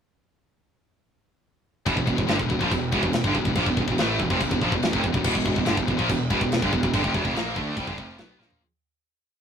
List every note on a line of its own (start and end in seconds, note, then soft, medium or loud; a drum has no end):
1.86 1.96 E1 medium
1.86 1.95 E2 medium
1.86 1.96 B2 loud
1.86 kick loud
1.86 china medium
1.96 2.07 E1 medium
1.96 2.05 E2 medium
1.96 2.06 B2 medium
1.96 kick medium
2.06 2.17 E1 medium
2.06 2.16 E2 medium
2.06 2.16 B2 medium
2.06 kick medium
2.17 2.28 E1 medium
2.17 2.26 E2 medium
2.17 2.27 B2 medium
2.17 kick medium
2.27 2.39 G1 medium
2.27 2.37 G2 medium
2.27 2.38 D3 loud
2.27 snare loud
2.27 china medium
2.38 2.49 E1 medium
2.38 2.47 E2 medium
2.38 2.48 B2 medium
2.38 kick medium
2.49 2.60 E1 medium
2.49 2.60 E2 medium
2.49 2.59 B2 medium
2.49 kick medium
2.59 2.71 A#1 medium
2.59 2.70 A#2 medium
2.59 2.70 F3 loud
2.59 kick medium
2.71 2.91 E1 medium
2.71 2.89 E2 medium
2.71 2.88 B2 medium
2.71 kick medium
2.71 china medium
2.92 3.02 E1 medium
2.92 3.02 E2 loud
2.92 3.03 B2 loud
2.92 kick loud
3.03 3.23 E1 medium
3.03 3.20 E2 medium
3.03 3.21 B2 medium
3.03 kick medium
3.13 snare loud
3.13 china medium
3.24 3.34 G1 loud
3.24 3.34 G2 medium
3.24 3.34 D3 medium
3.24 kick loud
3.35 3.44 E1 medium
3.35 3.45 E2 medium
3.35 3.45 B2 medium
3.35 kick medium
3.45 3.55 E1 medium
3.45 3.56 E2 medium
3.45 3.56 B2 medium
3.45 kick medium
3.55 3.65 A#1 medium
3.55 3.66 A#2 medium
3.55 3.66 F3 loud
3.55 kick medium
3.55 china medium
3.66 3.76 E1 medium
3.66 3.75 E2 medium
3.66 3.76 B2 medium
3.66 kick medium
3.77 3.87 E1 medium
3.77 3.86 E2 medium
3.77 3.87 B2 medium
3.77 kick medium
3.81 3.89 E2 medium
3.88 3.97 E1 medium
3.88 3.98 E2 medium
3.88 3.98 B2 medium
3.88 kick medium
3.98 4.18 A1 medium
3.98 4.19 A2 medium
3.98 4.19 E3 medium
3.98 4.19 A3 loud
3.98 snare loud
3.98 china medium
4.19 4.29 E1 medium
4.19 4.30 E2 medium
4.19 4.30 B2 medium
4.19 kick medium
4.30 4.40 F1 medium
4.30 4.40 F2 medium
4.30 4.40 C3 loud
4.30 kick medium
4.40 4.50 E1 medium
4.40 4.51 E2 medium
4.40 4.50 B2 medium
4.40 kick medium
4.40 china medium
4.51 4.61 E1 medium
4.51 4.62 E2 medium
4.51 4.62 B2 medium
4.51 kick medium
4.61 4.71 A#1 medium
4.61 4.72 A#2 loud
4.61 4.72 F3 loud
4.61 kick medium
4.72 4.82 E1 medium
4.72 4.81 E2 medium
4.72 4.82 B2 medium
4.72 kick medium
4.82 4.93 E1 medium
4.82 4.92 E2 medium
4.82 4.92 B2 medium
4.82 snare loud
4.82 china medium
4.92 5.03 F1 medium
4.92 5.02 F2 medium
4.92 5.02 C3 medium
4.92 kick loud
5.02 5.13 E1 medium
5.02 5.12 E2 medium
5.02 5.12 B2 medium
5.02 kick medium
5.07 5.16 E2 medium
5.13 5.24 E1 medium
5.13 5.24 E2 medium
5.13 5.23 B2 medium
5.13 kick medium
5.17 5.26 B2 medium
5.24 5.34 E1 medium
5.24 5.33 E2 medium
5.24 5.34 B2 loud
5.24 kick loud
5.24 crash loud
5.24 china medium
5.35 5.45 E1 medium
5.35 5.43 E2 medium
5.35 5.43 B2 medium
5.35 kick medium
5.44 5.55 E1 medium
5.44 5.54 E2 medium
5.44 5.55 B2 medium
5.44 kick medium
5.55 5.66 E1 medium
5.55 5.65 E2 medium
5.55 5.65 B2 medium
5.55 kick medium
5.65 5.76 G1 medium
5.65 5.76 G2 medium
5.65 5.76 D3 loud
5.65 snare loud
5.65 china medium
5.76 5.87 E1 medium
5.76 5.86 E2 medium
5.76 5.87 B2 medium
5.76 kick loud
5.87 5.97 E1 medium
5.87 5.98 E2 medium
5.87 5.97 B2 medium
5.87 kick medium
5.97 6.08 A#1 medium
5.97 6.07 A#2 loud
5.97 6.08 F3 medium
5.97 kick medium
6.09 6.28 E1 medium
6.09 6.26 E2 medium
6.09 6.26 B2 medium
6.09 kick medium
6.09 china medium
6.30 6.40 E1 medium
6.30 6.39 E2 medium
6.30 6.40 B2 loud
6.30 kick loud
6.41 6.60 E1 medium
6.41 6.57 E2 medium
6.41 6.57 B2 medium
6.41 kick medium
6.52 snare loud
6.52 china medium
6.62 6.72 G1 medium
6.62 6.71 G2 medium
6.62 6.72 D3 medium
6.62 kick loud
6.73 6.82 E1 medium
6.73 6.83 E2 medium
6.73 6.83 B2 medium
6.73 kick medium
6.83 6.92 E1 medium
6.83 6.93 E2 medium
6.83 6.93 B2 medium
6.83 kick medium
6.94 7.03 G1 medium
6.94 7.02 G2 loud
6.94 7.03 D3 loud
6.94 kick medium
6.94 china medium
7.02 7.13 F1 loud
7.02 7.12 F2 medium
7.02 7.13 C3 medium
7.02 kick medium
7.13 7.24 E1 medium
7.13 7.23 E2 medium
7.13 7.24 B2 medium
7.13 kick medium
7.25 7.33 F1 medium
7.25 7.34 F2 medium
7.25 7.34 C3 loud
7.25 kick medium
7.34 7.53 A#1 medium
7.34 7.55 A#2 medium
7.34 7.55 F3 medium
7.34 7.55 A#3 medium
7.34 snare loud
7.34 china medium
7.56 7.75 D2 medium
7.56 7.76 D3 medium
7.56 7.76 A3 loud
7.56 7.76 D4 loud
7.56 kick medium
7.76 7.86 C2 medium
7.76 7.86 C3 medium
7.76 7.86 G3 loud
7.76 kick loud
7.76 china medium
7.87 7.97 G1 medium
7.87 7.97 G2 medium
7.87 7.97 D3 medium
7.87 kick medium
7.97 8.17 F1 loud
7.97 8.18 F2 loud
7.97 8.18 C3 loud
7.97 8.18 F3 loud
7.97 kick medium
8.18 8.38 B1 medium
8.18 8.38 B2 medium
8.18 8.38 F#3 medium
8.18 8.39 B3 loud
8.18 snare loud
8.18 china medium
8.38 8.59 A#1 medium
8.38 8.59 A#2 medium
8.38 8.59 F3 medium
8.38 8.60 A#3 medium
8.38 snare medium
8.50 floor tom loud